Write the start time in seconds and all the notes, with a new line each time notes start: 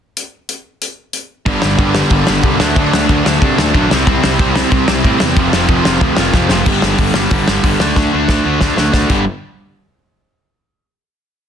0.17 closed hi-hat
0.49 closed hi-hat
0.82 closed hi-hat
1.13 closed hi-hat
1.46 G1 G2 D3 G3 B3 D4, kick, crash
1.62 G1 G2 D3 G3, snare
1.78 G1 G2 D3 G3, kick, crash
1.95 G2 D3 G3, snare
2.10 G1 G2 D3 G3, kick, crash
2.26 G1 G2 D3 G3, snare
2.43 C2 G2 D3 G3, kick, crash
2.60 D2 D3 F#3 A3 D4, snare
2.76 D2 D3 A3 D4, kick, crash
2.92 D2 D3 A3 D4, snare
3.07 D2 D3 A3 D4, kick, crash
3.24 D2 D3 A3 D4, snare
3.41 C3 D3 A3 D4, kick, crash
3.57 D2 D3 A3 D4, snare
3.74 B1 D3 F#3 A3 D4, kick, crash
3.90 C2 C3 G3 C4 E4, snare
4.06 C2 C3 G3 C4, kick, crash
4.23 C2 C3 G3 C4, snare
4.39 C2 C3 G3 C4, kick, crash
4.55 C3 G3 C4, snare
4.69 C2 C3 G3 C4, kick, crash
4.86 C2 C3 G3 C4, snare
5.02 A2 C3 G3 C4, kick, crash
5.07 C4 E4
5.19 E2 C3 G3 C4, snare
5.35 F1 F2 C3 F3 A3 C4 F4, kick, crash
5.51 F1 F2 C3 F3, snare
5.68 F1 F2 C3 F3, kick, crash
5.84 F1 F2 C3 F3, snare
6.00 D2 F2 C3 F3, kick, crash
6.17 F1 F2 C3 F3, snare
6.33 F2 C3 F3, kick, snare
6.49 F1 F2 C3 F3 A3 C4 F4, snare
6.66 G1 G2 D3 G3, kick, crash
6.82 G1 G2 D3 G3, snare
6.98 G1 G2 D3 G3, kick, open hi-hat
7.14 G1 G2 D3 G3, snare
7.31 G1 G2 D3 G3, kick, open hi-hat
7.47 G1 G2 D3 G3, snare
7.63 G1 G2 D3 G3, kick, open hi-hat
7.80 D2 D3 A3 D4, snare
7.96 D2 D3 A3 D4, kick, snare
8.13 D2 D3 A3 D4
8.28 D2 D3 A3 D4, kick, snare
8.45 D2 D3 A3 D4
8.59 D2 D3 A3 D4, kick, snare
8.77 D2 D3 A3 D4, snare
8.93 D2 D3 A3 D4, kick, snare
9.09 G1 G2 D3 G3, kick, crash